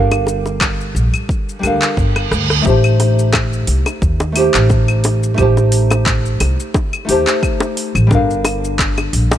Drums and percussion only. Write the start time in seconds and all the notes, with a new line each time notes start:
0.11 high bongo, claves, shaker
0.27 high bongo, shaker
0.46 high bongo, shaker
0.61 kick, clap, claves, shaker
0.81 shaker
0.96 shaker
1.14 claves, shaker
1.29 kick, shaker
1.49 shaker
1.63 claves, shaker
1.82 clap, shaker
1.97 kick, shaker
2.16 cross-stick, claves, shaker
2.32 cross-stick, shaker
2.50 cross-stick, shaker
2.66 kick, shaker
2.84 claves, shaker
3.00 open hi-hat, high bongo
3.19 shaker
3.33 kick, clap, high bongo, claves, shaker
3.53 shaker
3.67 open hi-hat
3.86 high bongo, claves, shaker
4.02 kick, shaker
4.20 high bongo, shaker
4.36 open hi-hat, claves
4.54 clap, shaker
4.70 kick, high bongo, shaker
4.88 claves, shaker
5.04 open hi-hat, high bongo
5.23 shaker
5.38 kick, claves, shaker
5.57 high bongo, shaker
5.72 open hi-hat
5.91 high bongo, claves, shaker
6.06 kick, clap, shaker
6.26 shaker
6.40 open hi-hat, high bongo, claves
6.60 shaker
6.74 kick, high bongo, shaker
6.93 claves, shaker
7.09 open hi-hat
7.27 clap, high bongo, shaker
7.43 kick, claves, shaker
7.60 high bongo, shaker
7.77 open hi-hat
7.95 claves, shaker
8.11 kick, high bongo, shaker
8.30 shaker
8.44 open hi-hat, high bongo, claves
8.65 shaker
8.79 kick, clap, shaker
8.98 high bongo, claves, shaker
9.13 open hi-hat
9.31 high bongo, shaker